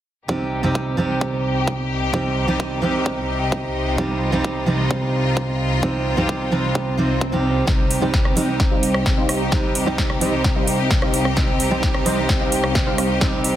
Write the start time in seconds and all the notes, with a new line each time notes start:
0.28 C2 C3 G3 C4 D#4 G4, kick
0.63 C3 G3 C4 D#4 G4
0.75 kick
0.97 C3 G3 C4 D#4 G4
1.21 kick
1.68 kick
2.13 C3 G3 C4 D#4 G4, kick
2.48 C3 G3 C4 D#4 G4
2.60 kick
2.82 C3 G3 C4 D#4 G4
3.06 kick
3.52 kick
3.98 C3 G3 C4 D#4 F4 G4, kick
4.32 C3 G3 C4 D#4 G4
4.44 kick
4.66 C3 G3 C4 D#4 G4
4.91 kick
5.37 kick
5.82 C3 G3 C4 D#4 G4, kick
6.17 C3 G3 C4 D#4 G4
6.29 kick
6.51 C3 G3 C4 D#4 G4
6.75 kick, swell
6.98 C3 G3 C4 D#4 C5
7.21 kick
7.32 C3 G3 C4 D#4 G4
7.67 C2 C3 G3 C4 D#4 G4 C5 D#5, kick, snare
7.91 open hi-hat
8.01 C3 G3 C4 D#4 G4 C5 G5
8.14 kick, snare
8.25 cross-stick
8.36 C3 G3 C4 D#4 G4 C5 D#5, open hi-hat
8.60 kick, snare
8.71 G3 C4 D#4 C5 F5
8.83 open hi-hat
8.94 cross-stick
9.06 kick, snare
9.18 G3 C4 D#4 C5 F5
9.29 cross-stick, open hi-hat
9.51 C3 G3 C4 D#4 G4 C5 D#5, kick, snare
9.75 open hi-hat
9.86 C3 G3 C4 D#4 G4 C5 G5
9.98 kick, snare
10.10 cross-stick
10.20 C3 G3 C4 D#4 G4 C5 D#5, open hi-hat
10.44 kick, snare
10.56 G3 C4 D#4 C5 F5
10.67 open hi-hat
10.91 kick, snare
11.02 G3 C4 D#4 C5 F5, cross-stick
11.14 open hi-hat
11.25 cross-stick
11.36 C3 G3 C4 D#4 G4 C5 D#5, kick, snare
11.60 open hi-hat
11.71 C3 G3 C4 D#4 G4 C5 G5
11.83 kick, snare
11.94 cross-stick
12.05 C3 G3 C4 D#4 G4 C5 D#5, open hi-hat
12.29 kick, snare
12.41 G3 C4 D#4 C5 F5
12.52 open hi-hat
12.64 cross-stick
12.75 kick, snare
12.87 G3 C4 D#4 C5 F5
12.98 cross-stick, open hi-hat
13.21 C3 G3 C4 D#4 G4 C5 D#5, kick, snare
13.44 open hi-hat